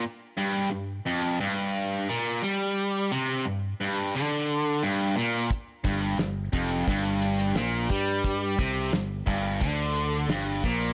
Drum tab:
HH |----------------|----------------|x-x-x-x-x-xxx-x-|x-x-x-x-x-x-x-xx|
SD |----------------|----------------|----o-------o---|----o-------o---|
BD |----------------|----------------|o-o---o-o-----o-|o-o---o-o-----o-|